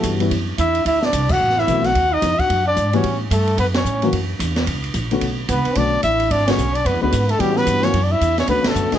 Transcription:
Already playing: grand piano E3 G3 B3 C#4 F#4, trombone A3, trumpet A4
0.03 upright bass G2, kick, hi-hat pedal, ride
0.19 grand piano E3 G3 B3 C#4 E4, ride
0.31 upright bass F#2, kick, ride
0.58 upright bass E2, trombone E4, trumpet E5, kick, hi-hat pedal, ride
0.75 ride
0.85 upright bass D2, trombone E4, trumpet E5, kick, ride
1.02 trombone D4, trumpet D5, snare
1.13 upright bass C2, kick, hi-hat pedal, ride
1.29 trombone F#4, trumpet F#5, kick, crash
1.40 upright bass A1
1.50 snare
1.57 trombone E4, trumpet E5, snare
1.67 upright bass B1, grand piano E3 A3 B3 C4 F#4, kick, hi-hat pedal, ride
1.84 trombone F#4, trumpet F#5, snare, ride
1.95 upright bass D#2, kick, ride
2.13 trombone D#4, trumpet D#5
2.22 upright bass F2, kick, snare, hi-hat pedal, ride
2.38 trombone F#4, trumpet F#5, muted upright bass stroke, kick, ride
2.49 upright bass F#2, kick, ride
2.66 trombone D4, trumpet D5
2.76 upright bass G#2, kick, hi-hat pedal, ride
2.93 grand piano E3 G3 B3 C#4 F#4, trombone C#4, trumpet C#5, ride
3.03 upright bass A2, kick, ride
3.31 upright bass G2, trombone A3, trumpet A4, kick, hi-hat pedal, ride
3.47 ride
3.58 upright bass F#2, trombone B3, trumpet B4, kick, ride
3.74 trombone C#4, trumpet C#5, snare, ride
3.84 upright bass A2, hi-hat pedal
4.02 grand piano E3 F#3 A#3 C#4 F#4, ride
4.12 upright bass F#2, kick, ride
4.39 upright bass E2, kick, hi-hat pedal, ride
4.56 snare, ride
4.66 upright bass C#2, kick, ride
4.84 ride
4.94 upright bass A#1, kick, hi-hat pedal, ride
5.11 grand piano D3 A3 B3 C#4 F#4, ride
5.21 upright bass B1, kick, ride
5.49 upright bass C#2, trombone B3, trumpet B4, kick, hi-hat pedal, ride
5.65 muted upright bass stroke, ride
5.75 upright bass B1, grand piano D3 A3 B3 C#4 F#4, trombone D4, trumpet D5, kick, ride
6.03 upright bass A1, trombone E4, trumpet E5, kick, hi-hat pedal, ride
6.20 ride
6.30 upright bass G#1, trombone D4, trumpet D5, kick, ride
6.46 grand piano D3 G#3 B3 C#4 F#4, trombone C#4, trumpet C#5, snare, ride
6.57 upright bass B1, hi-hat pedal
6.74 trombone D4, trumpet D5, ride
6.85 upright bass F#2, trombone B3, trumpet B4, kick, ride
6.94 upright bass E2
7.01 upright bass D2, grand piano D3 G#3 B3 C#4 F#4, trombone B3, trumpet B4
7.12 upright bass G#2, kick, hi-hat pedal, ride
7.29 trombone A3, trumpet A4, ride
7.39 upright bass A2, grand piano E3 G3 B3 C#4 F#4, trombone G3, trumpet G4, kick, ride
7.56 trombone B3, trumpet B4, snare
7.66 upright bass G2, kick, hi-hat pedal, ride
7.83 grand piano E3 F#3 A#3 C#4 F#4, trombone C#4, trumpet C#5, snare, ride
7.93 upright bass F#2, kick, ride
8.03 trombone D4, trumpet D5
8.11 trombone E4, trumpet E5
8.21 upright bass E2, kick, hi-hat pedal, ride
8.38 trombone C#4, trumpet C#5, snare, ride
8.47 upright bass D2, grand piano D3 A3 B3 C#4 F#4, trombone B3, trumpet B4, kick, ride
8.64 trombone A3, muted upright bass stroke, snare, ride
8.68 trumpet A4
8.75 upright bass F#2, hi-hat pedal
8.92 grand piano D3 G#3 B3 C#4 F#4, trombone G#3, trumpet G#4, muted upright bass stroke, snare, ride

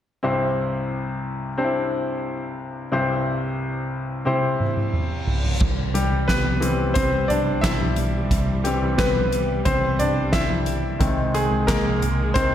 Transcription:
0.23 grand piano C2 G2 C4 E4 G4 C5
1.58 grand piano C4 D4 G4 C5
1.64 grand piano E4
2.92 grand piano C2 G2 C4 E4 G4 C5
4.25 grand piano C4 E4 G4 C5, high tom, reverse cymbal
4.60 mid tom
4.77 mid tom
4.93 mid tom
5.27 floor tom
5.44 floor tom
5.60 picked electric bass C2, string section E3 G3, kick, crash
5.94 grand piano G3 G4, closed hi-hat
6.12 picked electric bass C2
6.28 grand piano B3 B4, kick, snare, clap, closed hi-hat
6.60 grand piano E3 G3 C4, closed hi-hat
6.94 picked electric bass C2, grand piano C4 C5, kick, closed hi-hat
7.28 grand piano D4 D5, closed hi-hat, floor tom
7.61 picked electric bass B1, grand piano E4 E5, kick, snare, clap, closed hi-hat
7.80 floor tom
7.96 picked electric bass B1, closed hi-hat
8.31 picked electric bass C2, kick, closed hi-hat
8.64 grand piano E3 G3 C4 G4, closed hi-hat
8.81 picked electric bass C2
8.98 grand piano B3 B4, kick, snare, clap, closed hi-hat
9.32 closed hi-hat
9.65 picked electric bass C2, grand piano C4 C5, kick, closed hi-hat
9.99 grand piano D4 D5, closed hi-hat, floor tom
10.32 grand piano E4 E5, kick, snare, clap, closed hi-hat
10.50 floor tom
10.66 closed hi-hat
10.99 picked electric bass C2, grand piano D#3 G#3 C4, string section D#3 G#3, kick, closed hi-hat
11.34 grand piano G#3 G#4, closed hi-hat
11.51 picked electric bass C2
11.67 grand piano A#3 A#4, kick, snare, clap, closed hi-hat
12.02 closed hi-hat, floor tom
12.34 picked electric bass C2, grand piano D#3 G#3 C4 C5, kick, closed hi-hat

